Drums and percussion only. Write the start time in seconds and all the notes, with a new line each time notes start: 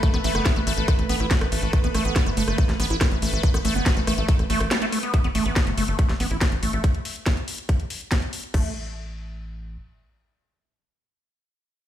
0.03 kick, closed hi-hat
0.14 cross-stick, closed hi-hat
0.24 open hi-hat
0.35 cross-stick, closed hi-hat
0.46 kick, snare, closed hi-hat
0.56 closed hi-hat
0.67 cross-stick, open hi-hat
0.78 closed hi-hat
0.88 kick, cross-stick, closed hi-hat
0.99 closed hi-hat
1.09 open hi-hat
1.20 cross-stick, closed hi-hat
1.31 kick, snare, closed hi-hat
1.41 cross-stick, closed hi-hat
1.52 open hi-hat
1.63 closed hi-hat
1.73 kick, cross-stick, closed hi-hat
1.84 closed hi-hat
1.95 cross-stick, open hi-hat
2.05 closed hi-hat
2.16 kick, snare, closed hi-hat
2.26 cross-stick, closed hi-hat
2.37 open hi-hat
2.48 cross-stick, closed hi-hat
2.58 kick, closed hi-hat
2.69 snare, closed hi-hat
2.80 cross-stick, open hi-hat
2.90 closed hi-hat
3.01 kick, cross-stick, snare, closed hi-hat
3.12 closed hi-hat
3.22 open hi-hat
3.33 closed hi-hat
3.43 kick, closed hi-hat
3.54 cross-stick, closed hi-hat
3.65 open hi-hat
3.75 closed hi-hat
3.86 kick, cross-stick, snare, closed hi-hat
3.97 closed hi-hat
4.07 cross-stick, open hi-hat
4.18 closed hi-hat
4.29 kick, closed hi-hat
4.39 cross-stick, closed hi-hat
4.50 open hi-hat
4.61 cross-stick, closed hi-hat
4.71 snare, closed hi-hat
4.82 closed hi-hat
4.92 cross-stick, open hi-hat
5.03 closed hi-hat
5.14 kick, closed hi-hat
5.24 closed hi-hat
5.35 open hi-hat
5.46 closed hi-hat
5.56 kick, snare, closed hi-hat
5.67 closed hi-hat
5.78 open hi-hat
5.88 closed hi-hat
5.99 kick, closed hi-hat
6.09 snare, closed hi-hat
6.20 open hi-hat
6.31 closed hi-hat
6.41 kick, snare, closed hi-hat
6.52 closed hi-hat
6.63 open hi-hat
6.73 closed hi-hat
6.84 kick, closed hi-hat
6.95 closed hi-hat
7.05 open hi-hat
7.16 closed hi-hat
7.26 kick, snare, closed hi-hat
7.37 closed hi-hat
7.48 open hi-hat
7.58 closed hi-hat
7.69 kick, closed hi-hat
7.80 closed hi-hat
7.90 open hi-hat
8.01 closed hi-hat
8.12 kick, snare, closed hi-hat
8.22 closed hi-hat
8.33 open hi-hat
8.44 closed hi-hat
8.54 kick, crash